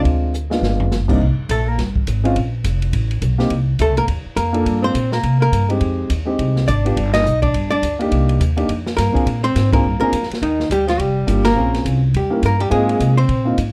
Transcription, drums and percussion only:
0.05 kick soft
0.05 ride soft
0.34 hi-hat pedal medium
0.51 snare soft
0.63 snare medium
0.80 floor tom medium
0.92 snare soft
0.92 hi-hat pedal soft
1.09 kick medium
1.09 crash medium
1.21 kick soft
1.49 kick soft
1.49 hi-hat pedal medium
1.49 ride medium
1.78 kick soft
1.78 snare soft
1.78 ride medium
1.96 kick medium
2.07 kick soft
2.07 hi-hat pedal medium
2.07 ride medium
2.25 ride soft
2.36 kick soft
2.36 ride medium
2.64 kick soft
2.64 hi-hat pedal medium
2.64 ride medium
2.82 ride soft
2.93 kick soft
2.93 ride medium
3.11 ride soft
3.21 kick soft
3.21 hi-hat pedal medium
3.21 ride medium
3.39 snare soft
3.50 kick soft
3.50 ride medium
3.79 kick soft
3.79 hi-hat pedal soft
3.79 ride medium
3.97 ride soft
4.08 kick soft
4.08 ride medium
4.37 kick soft
4.37 hi-hat pedal medium
4.37 ride medium
4.54 ride soft
4.66 kick soft
4.66 ride medium
4.94 kick soft
4.94 hi-hat pedal medium
4.94 ride medium
5.12 snare soft
5.23 kick soft
5.23 ride medium
5.52 kick soft
5.52 hi-hat pedal medium
5.52 ride medium
5.70 ride soft
5.81 kick soft
5.81 ride medium
6.10 kick soft
6.10 hi-hat pedal medium
6.10 ride medium
6.39 kick soft
6.39 ride medium
6.56 snare soft
6.68 kick soft
6.68 hi-hat pedal soft
6.68 ride medium
6.86 ride soft
6.97 kick soft
6.97 ride medium
7.14 snare medium
7.14 ride medium
7.26 hi-hat pedal medium
7.43 kick soft
7.43 ride soft
7.54 kick soft
7.54 ride medium
7.72 ride soft
7.83 kick soft
7.83 hi-hat pedal medium
7.83 ride medium
8.00 ride soft
8.11 kick soft
8.11 ride medium
8.29 ride soft
8.40 kick soft
8.40 hi-hat pedal medium
8.40 ride medium
8.57 ride soft
8.68 kick soft
8.68 ride medium
8.87 snare soft
8.98 kick soft
8.98 snare soft
8.98 hi-hat pedal medium
8.98 ride medium
9.15 kick soft
9.15 ride soft
9.26 kick soft
9.26 ride medium
9.45 ride soft
9.55 kick soft
9.55 snare soft
9.55 hi-hat pedal medium
9.55 ride medium
9.73 kick medium
9.73 ride medium
10.13 kick soft
10.13 hi-hat pedal medium
10.13 ride medium
10.23 snare soft
10.31 snare soft
10.31 ride soft
10.42 kick soft
10.42 ride medium
10.60 snare soft
10.70 kick soft
10.70 hi-hat pedal medium
10.70 ride medium
10.88 snare soft
10.88 ride soft
10.99 kick soft
10.99 ride medium
11.27 kick soft
11.27 hi-hat pedal medium
11.27 ride medium
11.45 snare medium
11.45 ride medium
11.74 snare soft
11.74 ride soft
11.85 kick soft
11.85 hi-hat pedal medium
11.85 ride medium
12.14 kick soft
12.14 ride medium
12.43 kick soft
12.43 hi-hat pedal soft
12.43 ride medium
12.60 ride soft
12.71 kick soft
12.71 ride medium
12.89 ride soft
13.00 kick soft
13.00 hi-hat pedal medium
13.00 ride medium
13.18 ride soft
13.29 kick soft
13.29 ride soft
13.58 kick soft
13.58 hi-hat pedal medium
13.58 ride medium

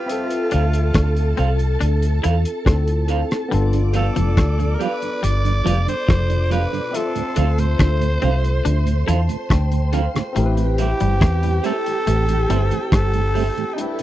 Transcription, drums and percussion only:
0.09 closed hi-hat medium
0.30 closed hi-hat medium
0.51 closed hi-hat medium
0.73 closed hi-hat medium
0.94 kick loud
0.94 cross-stick loud
0.94 closed hi-hat loud
1.17 closed hi-hat medium
1.37 closed hi-hat medium
1.59 closed hi-hat medium
1.81 closed hi-hat medium
2.02 closed hi-hat medium
2.24 closed hi-hat medium
2.45 closed hi-hat medium
2.66 kick loud
2.66 cross-stick loud
2.66 closed hi-hat medium
2.88 closed hi-hat medium
3.08 closed hi-hat medium
3.31 cross-stick medium
3.31 closed hi-hat medium
3.52 closed hi-hat medium
3.73 closed hi-hat medium
3.93 closed hi-hat medium
4.16 closed hi-hat medium
4.37 kick loud
4.37 cross-stick loud
4.37 closed hi-hat loud
4.60 closed hi-hat medium
4.81 closed hi-hat medium
5.02 closed hi-hat medium
5.24 closed hi-hat medium
5.45 closed hi-hat medium
5.67 closed hi-hat medium
5.88 closed hi-hat medium
6.09 kick loud
6.09 cross-stick loud
6.09 closed hi-hat loud
6.30 closed hi-hat medium
6.51 closed hi-hat medium
6.74 closed hi-hat medium
6.94 closed hi-hat medium
7.16 closed hi-hat medium
7.36 closed hi-hat medium
7.58 closed hi-hat medium
7.79 kick loud
7.79 cross-stick loud
7.79 closed hi-hat medium
8.02 closed hi-hat medium
8.22 closed hi-hat medium
8.44 closed hi-hat medium
8.65 closed hi-hat medium
8.87 closed hi-hat medium
9.08 closed hi-hat medium
9.29 closed hi-hat medium
9.50 kick loud
9.50 cross-stick loud
9.50 closed hi-hat medium
9.72 closed hi-hat medium
9.93 closed hi-hat medium
10.16 cross-stick medium
10.16 closed hi-hat medium
10.36 closed hi-hat medium
10.57 closed hi-hat medium
10.78 closed hi-hat medium
11.00 closed hi-hat medium
11.21 kick loud
11.21 cross-stick loud
11.21 closed hi-hat medium
11.43 closed hi-hat medium
11.64 closed hi-hat medium
11.86 closed hi-hat medium
12.07 closed hi-hat medium
12.29 closed hi-hat medium
12.50 closed hi-hat medium
12.71 closed hi-hat medium
12.92 kick loud
12.92 cross-stick loud
12.92 closed hi-hat loud
13.13 closed hi-hat medium
13.35 open hi-hat medium
13.58 closed hi-hat medium
13.78 closed hi-hat medium
13.99 closed hi-hat medium

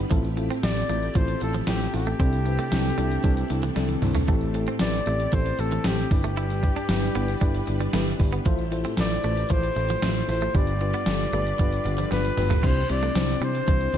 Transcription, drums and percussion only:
0.11 kick loud
0.11 closed hi-hat loud
0.25 closed hi-hat medium
0.37 closed hi-hat medium
0.50 closed hi-hat medium
0.63 snare loud
0.63 closed hi-hat medium
0.77 closed hi-hat medium
0.89 closed hi-hat medium
1.03 closed hi-hat soft
1.15 kick loud
1.15 closed hi-hat medium
1.28 closed hi-hat soft
1.41 closed hi-hat medium
1.54 closed hi-hat medium
1.67 snare loud
1.67 closed hi-hat medium
1.80 closed hi-hat soft
1.94 open hi-hat medium
2.06 closed hi-hat medium
2.20 kick loud
2.20 closed hi-hat medium
2.33 closed hi-hat soft
2.46 closed hi-hat medium
2.59 closed hi-hat medium
2.72 snare loud
2.72 closed hi-hat medium
2.85 closed hi-hat medium
2.98 closed hi-hat medium
3.12 closed hi-hat soft
3.24 kick loud
3.24 closed hi-hat medium
3.37 closed hi-hat medium
3.50 closed hi-hat medium
3.63 closed hi-hat medium
3.76 snare medium
3.76 closed hi-hat medium
3.89 closed hi-hat soft
3.89 high tom medium
4.02 mid tom medium
4.02 open hi-hat medium
4.14 closed hi-hat medium
4.14 floor tom medium
4.28 kick loud
4.28 closed hi-hat medium
4.41 closed hi-hat soft
4.54 closed hi-hat medium
4.67 closed hi-hat medium
4.79 snare loud
4.79 closed hi-hat medium
4.93 closed hi-hat medium
5.06 closed hi-hat medium
5.20 closed hi-hat soft
5.32 kick medium
5.32 closed hi-hat medium
5.46 closed hi-hat medium
5.59 closed hi-hat medium
5.71 closed hi-hat medium
5.84 snare loud
5.84 closed hi-hat medium
5.97 closed hi-hat soft
6.11 kick loud
6.11 open hi-hat medium
6.24 closed hi-hat medium
6.37 closed hi-hat medium
6.50 closed hi-hat soft
6.63 kick medium
6.63 closed hi-hat medium
6.76 closed hi-hat medium
6.89 snare loud
6.89 closed hi-hat medium
7.02 closed hi-hat medium
7.15 closed hi-hat medium
7.28 closed hi-hat soft
7.41 kick loud
7.41 closed hi-hat medium
7.54 closed hi-hat medium
7.67 closed hi-hat medium
7.80 closed hi-hat medium
7.93 snare loud
7.93 closed hi-hat medium
8.06 closed hi-hat soft
8.19 kick medium
8.19 open hi-hat medium
8.32 closed hi-hat medium
8.45 kick loud
8.45 closed hi-hat medium
8.59 closed hi-hat soft
8.72 closed hi-hat medium
8.84 closed hi-hat medium
8.97 snare loud
8.97 closed hi-hat medium
8.97 tambourine medium
9.11 closed hi-hat medium
9.24 closed hi-hat medium
9.37 closed hi-hat soft
9.50 kick loud
9.50 closed hi-hat loud
9.63 closed hi-hat medium
9.76 closed hi-hat medium
9.90 closed hi-hat medium
10.02 snare loud
10.02 closed hi-hat medium
10.02 tambourine medium
10.15 closed hi-hat soft
10.29 open hi-hat medium
10.41 closed hi-hat medium
10.54 kick loud
10.54 closed hi-hat loud
10.67 closed hi-hat medium
10.81 closed hi-hat medium
10.93 closed hi-hat medium
11.06 snare loud
11.06 closed hi-hat medium
11.06 tambourine medium
11.20 closed hi-hat medium
11.33 closed hi-hat medium
11.47 closed hi-hat soft
11.59 kick loud
11.59 closed hi-hat medium
11.72 closed hi-hat medium
11.86 closed hi-hat medium
11.99 closed hi-hat medium
12.12 snare medium
12.12 closed hi-hat medium
12.25 closed hi-hat soft
12.38 mid tom medium
12.38 open hi-hat medium
12.51 closed hi-hat medium
12.51 floor tom medium
12.63 kick loud
12.63 closed hi-hat loud
12.63 crash loud
12.77 closed hi-hat soft
12.89 closed hi-hat medium
13.03 closed hi-hat medium
13.15 snare loud
13.15 closed hi-hat loud
13.15 tambourine medium
13.29 closed hi-hat medium
13.41 closed hi-hat medium
13.55 closed hi-hat soft
13.68 kick loud
13.68 closed hi-hat loud
13.81 closed hi-hat medium
13.94 closed hi-hat medium

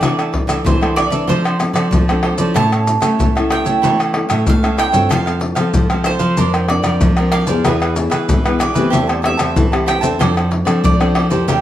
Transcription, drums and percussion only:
0.03 pandeiro medium
0.03 tamborim medium
0.03 maracas medium
0.03 surdo medium
0.19 pandeiro soft
0.19 tamborim medium
0.19 maracas soft
0.34 pandeiro medium
0.34 surdo medium
0.49 pandeiro medium
0.49 tamborim medium
0.49 maracas medium
0.66 pandeiro medium
0.66 maracas medium
0.66 surdo loud
0.83 pandeiro soft
0.83 tamborim medium
0.83 maracas soft
0.97 pandeiro medium
0.97 tamborim medium
0.97 maracas medium
1.12 pandeiro medium
1.12 maracas medium
1.29 pandeiro medium
1.29 maracas medium
1.29 surdo medium
1.45 pandeiro soft
1.45 tamborim medium
1.45 maracas soft
1.60 pandeiro medium
1.60 tamborim medium
1.60 maracas medium
1.76 pandeiro medium
1.76 tamborim medium
1.76 maracas medium
1.93 pandeiro medium
1.93 maracas medium
1.93 surdo medium
2.09 pandeiro soft
2.09 tamborim medium
2.09 maracas soft
2.23 pandeiro medium
2.23 tamborim medium
2.38 pandeiro medium
2.38 maracas medium
2.56 pandeiro medium
2.56 tamborim medium
2.56 maracas medium
2.56 surdo medium
2.72 pandeiro soft
2.72 tamborim medium
2.72 maracas soft
2.87 pandeiro medium
2.87 maracas medium
3.02 pandeiro medium
3.02 tamborim medium
3.02 maracas medium
3.20 pandeiro medium
3.20 maracas medium
3.20 surdo medium
3.37 pandeiro soft
3.37 tamborim medium
3.37 maracas soft
3.50 pandeiro medium
3.50 tamborim medium
3.66 pandeiro medium
3.66 maracas medium
3.84 pandeiro medium
3.84 maracas medium
3.84 surdo medium
4.00 pandeiro soft
4.00 tamborim medium
4.00 maracas soft
4.14 pandeiro medium
4.14 tamborim medium
4.30 pandeiro medium
4.30 tamborim medium
4.30 maracas medium
4.47 pandeiro medium
4.47 maracas medium
4.47 surdo loud
4.64 pandeiro soft
4.64 tamborim medium
4.64 maracas soft
4.78 pandeiro medium
4.78 tamborim medium
4.78 maracas medium
4.94 pandeiro medium
4.94 maracas medium
5.11 pandeiro medium
5.11 tamborim medium
5.11 maracas medium
5.11 surdo medium
5.27 pandeiro soft
5.27 tamborim medium
5.27 maracas soft
5.41 pandeiro medium
5.56 pandeiro medium
5.56 tamborim medium
5.56 maracas medium
5.74 pandeiro medium
5.74 maracas medium
5.74 surdo loud
5.90 pandeiro soft
5.90 tamborim medium
5.90 maracas soft
6.04 pandeiro medium
6.04 tamborim medium
6.04 maracas medium
6.19 pandeiro medium
6.19 maracas medium
6.37 pandeiro medium
6.37 maracas medium
6.37 surdo medium
6.54 pandeiro soft
6.54 tamborim medium
6.54 maracas soft
6.68 pandeiro medium
6.68 tamborim medium
6.84 pandeiro medium
6.84 tamborim medium
6.84 maracas medium
7.01 pandeiro medium
7.01 maracas medium
7.01 surdo loud
7.17 pandeiro soft
7.17 tamborim medium
7.17 maracas soft
7.32 pandeiro medium
7.32 tamborim medium
7.47 pandeiro medium
7.47 maracas medium
7.65 pandeiro medium
7.65 tamborim medium
7.65 maracas medium
7.65 surdo medium
7.82 pandeiro soft
7.82 tamborim medium
7.82 maracas soft
7.96 pandeiro medium
7.96 maracas medium
8.12 pandeiro medium
8.12 tamborim medium
8.12 maracas medium
8.29 pandeiro medium
8.29 maracas medium
8.29 surdo loud
8.46 pandeiro soft
8.46 tamborim medium
8.46 maracas soft
8.60 pandeiro medium
8.60 tamborim medium
8.60 maracas medium
8.76 pandeiro medium
8.76 maracas medium
8.93 pandeiro medium
8.93 maracas medium
8.93 surdo medium
9.09 pandeiro soft
9.09 tamborim medium
9.09 maracas soft
9.24 pandeiro medium
9.24 tamborim medium
9.39 pandeiro medium
9.39 tamborim medium
9.39 maracas medium
9.56 pandeiro medium
9.56 maracas medium
9.56 surdo loud
9.73 pandeiro soft
9.73 tamborim medium
9.73 maracas soft
9.88 pandeiro medium
9.88 tamborim medium
9.88 maracas medium
10.03 pandeiro medium
10.03 maracas medium
10.21 pandeiro medium
10.21 tamborim medium
10.21 maracas medium
10.21 surdo medium
10.37 pandeiro soft
10.37 tamborim medium
10.37 maracas soft
10.52 pandeiro medium
10.67 pandeiro medium
10.67 tamborim medium
10.67 maracas medium
10.84 pandeiro medium
10.84 maracas medium
10.84 surdo loud
11.01 pandeiro soft
11.01 tamborim medium
11.01 maracas soft
11.15 pandeiro medium
11.15 tamborim medium
11.31 pandeiro medium
11.31 maracas medium
11.48 pandeiro medium
11.48 maracas medium
11.48 surdo medium

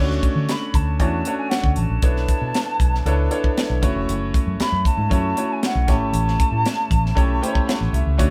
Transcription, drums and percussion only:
0.11 snare soft
0.23 kick medium
0.23 closed hi-hat medium
0.49 snare medium
0.49 closed hi-hat medium
0.74 kick medium
0.74 closed hi-hat medium
1.00 kick medium
1.00 closed hi-hat medium
1.25 closed hi-hat medium
1.51 snare loud
1.51 closed hi-hat medium
1.64 kick medium
1.76 closed hi-hat medium
2.02 kick loud
2.02 closed hi-hat medium
2.16 snare soft
2.28 kick medium
2.28 closed hi-hat medium
2.54 snare loud
2.54 closed hi-hat medium
2.80 kick medium
2.80 closed hi-hat medium
2.95 snare soft
3.06 closed hi-hat medium
3.31 closed hi-hat medium
3.44 kick medium
3.57 snare loud
3.57 closed hi-hat medium
3.83 kick medium
3.83 closed hi-hat medium
4.09 closed hi-hat medium
4.34 kick medium
4.34 closed hi-hat medium
4.60 snare loud
4.60 closed hi-hat medium
4.85 kick medium
4.85 closed hi-hat medium
5.11 kick medium
5.11 closed hi-hat medium
5.37 closed hi-hat medium
5.63 snare loud
5.63 closed hi-hat medium
5.88 kick loud
5.88 snare soft
5.88 closed hi-hat medium
6.14 closed hi-hat medium
6.28 snare soft
6.40 kick medium
6.40 closed hi-hat medium
6.66 snare medium
6.66 closed hi-hat medium
6.91 kick medium
6.91 closed hi-hat medium
7.06 snare soft
7.17 kick medium
7.17 closed hi-hat medium
7.43 closed hi-hat medium
7.55 kick medium
7.69 snare loud
7.69 closed hi-hat medium
7.94 closed hi-hat medium
8.19 kick loud
8.19 closed hi-hat medium

